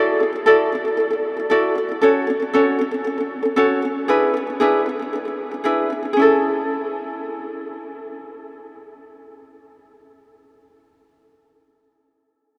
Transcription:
Already playing: E4 F#4 A4 D5
0.20 E4 A4
0.33 E4 A4
0.46 E4 F#4 A4 D5
0.72 E4 A4
0.85 E4 A4
0.97 E4 A4
1.11 E4 A4
1.37 E4 A4
1.50 E4 F#4 A4 D5
1.75 E4 A4
1.89 E4 A4
2.02 C#4 F#4 A4 C#5
2.27 C#4 A4
2.40 C#4 A4
2.53 C#4 F#4 A4 C#5
2.79 C#4 A4
2.91 C#4 A4
3.04 C#4 A4
3.18 C#4 A4
3.43 C#4 A4
3.56 C#4 F#4 A4 C#5
3.82 C#4 A4
4.08 D4 E4 G#4 B4
4.34 D4 G#4
4.47 D4 G#4
4.60 D4 E4 G#4 B4
4.86 D4 G#4
4.99 D4 G#4
5.13 D4 G#4
5.25 D4 G#4
5.51 D4 G#4
5.64 D4 E4 G#4 B4
5.90 D4 G#4
6.03 D4 G#4
6.13 C#4 G#4
6.19 E4 A4

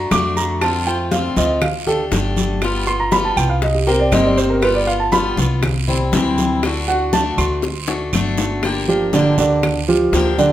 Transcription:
Already playing: A3 D4 F#4 A#5
0.11 F2 D3 A3 D4 F#4 D6, high bongo, low bongo, high conga, short guiro, claves
0.36 A#5, high bongo, high conga, short guiro
0.61 D3 A3 C4 F4 A5, high bongo, high conga, long guiro, claves
0.87 A3 C4 F4 G5, high conga
1.11 D3 A3 C4 F4 F5, high bongo, high conga, short guiro
1.36 D2 A3 C4 F4 D#5, high bongo, high conga, short guiro
1.62 F5, muted steel-string acoustic guitar stroke, high bongo, high conga, low conga, long guiro, claves
1.87 A3 D4 G4 A4, high bongo, high conga, low conga
2.11 G1 D3 A3 D4 G4, high bongo, low bongo, high conga, short guiro
2.37 high bongo, high conga, short guiro
2.62 G3 B3 F4, high bongo, long guiro, claves
2.87 B3 F4 C6, high bongo, high conga
3.00 A#5
3.11 G3 B3 F4 B5, high bongo, high conga, short guiro
3.25 A5
3.37 C2 B3 F4 G5, short guiro, claves
3.49 F5
3.62 D#5, muted steel-string acoustic guitar stroke, high bongo, high conga, long guiro
3.75 G4
3.87 A#3 C4 G4 A#4, high bongo, high conga
4.00 D5
4.11 G1 C3 D#3 A#3 C4 G4 D#5, high bongo, low bongo, high conga, short guiro, claves
4.25 D5
4.37 C5, high bongo, short guiro
4.50 A#4
4.62 G3 B3 F4 B4, high bongo, high conga, long guiro, claves
4.75 D5
4.87 B3 F4 F5, high conga
5.00 A5
5.12 G3 B3 F4 B5, high bongo, high conga, short guiro
5.37 C2 B3 F4, high bongo, high conga, short guiro
5.63 muted steel-string acoustic guitar stroke, high bongo, high conga, low conga, long guiro, claves
5.88 G3 C4 E4, high bongo, high conga, low conga
6.12 D2 C3 E3 G3 C4 E4, high bongo, low bongo, high conga, short guiro
6.38 high bongo, high conga, short guiro
6.63 D3 A3 D4 F#4, high bongo, long guiro, claves
6.88 A3 D4 F#4 F#5, high bongo, high conga
7.13 D3 A3 D4 F#4 A5, high bongo, high conga, short guiro
7.38 D2 A3 D4 F#4 C6, high conga, short guiro, claves
7.62 muted steel-string acoustic guitar stroke, high bongo, high conga, long guiro
7.88 A3 D4 F#4, low bongo, high conga
8.13 G1 D3 A3 D4 F#4, high conga, short guiro, claves
8.38 low bongo, high conga, short guiro
8.63 D3 F3 A#3 D4 G4, high bongo, high conga, long guiro, claves
8.88 F3 A#3 D4 F4 G4, high conga
9.13 D3 F3 A#3 D4 G4 D5, high bongo, high conga, short guiro
9.38 D2 D3 A#3 D4 G4 D5, high conga, short guiro
9.63 muted steel-string acoustic guitar stroke, high bongo, high conga, low conga, long guiro, claves
9.88 F3 F4 G4, high conga
10.13 D2 D3 F3 A#3 D4 G4, high bongo, low bongo, high conga, short guiro
10.38 D3 A#3 D4 G4 D5, high conga, short guiro

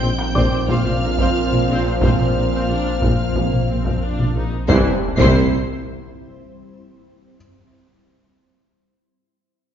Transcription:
Already playing: A#1 A#2 F3 A#3 C4 F4 C5 G5 G6
0.02 A#1 A#2 C4 C5
0.18 A#2 A#3 A#4, taiko rim
0.35 A#1 A#2 C4 C5 D5 D6, taiko
0.51 A#2 C4 C5
0.68 A#1 A#2 C4 C5 F5 F6, taiko
0.84 A#2 C4 C5, taiko mid
1.01 A#1 A#2 A#3 A#4
1.18 A#2 C4 C5, taiko
1.51 A#2 A#3 A#4, taiko mid
1.68 A#1 A#2 C4 C5
1.85 A#2 C4 C5
2.01 A#1 A#2 C4 C5 F5 F6, taiko
2.18 A#2 C4 C5, taiko mid
2.35 A#1 A#2 A#3 A#4
2.51 A#2 C4 C5
2.68 A#1 A#2 D4
2.84 A#2
3.01 A#1 A#2 C4, taiko
3.18 A#2
3.35 A#1 A#2 A#3, taiko
3.52 A#2, taiko mid
3.68 A#1 A#2 C4
3.84 A#2, taiko
4.03 D4
4.19 A#2, taiko mid
4.35 A#1 A#2 D#4
4.52 A#2
4.68 C2 G2 C3 E3 C4 E4 C5 C7, taiko, impact
5.17 C2 C3 E4 C5 C7, taiko

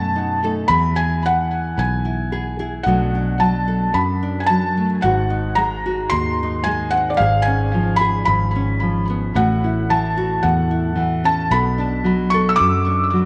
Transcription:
Already playing: F#2 B2 F#3 A3 D#4 A4 A5
0.16 D#4
0.43 A3 D#4 A4
0.68 E2 E3 G#4 B5
0.96 G#4 G#5
1.26 F#5
1.78 B1 G#5
2.05 E4
2.32 G#4
2.59 E4 G#4
2.83 B1 B2 F#3 A3 F#5
2.88 D4 A4
3.15 D4
3.40 F#3 A5
3.68 A4
3.94 F#2 B5
4.23 D4
4.40 G#5
4.46 F#3 A5
4.77 A3
5.02 G#1 G#2 F#4 F#5
5.30 D#4
5.55 G#3 A#5
5.86 F#4
6.10 D#2 C6
6.14 D#3
6.43 D#4
6.64 G#3 G#5
6.91 C4 F#5
7.10 D5
7.17 G#1 G#2 F5
7.21 G#4
7.42 G#5
7.47 C#4
7.74 F3
7.96 B5
8.01 G#4
8.25 G#1 G#2 B5
8.56 C#4
8.82 F3
9.10 B3
9.35 A1 A2 F#4 F#5
9.64 E4
9.90 E3 A5
10.17 F#4
10.43 E2 A2 F#5
10.71 E4
10.96 E3
11.24 C#4 A5
11.51 B1 B2 A4 B5
11.78 D4
12.04 F#3
12.30 A4 C#6
12.49 E6
12.56 D6
12.60 F#2
12.86 D4
13.13 F#3

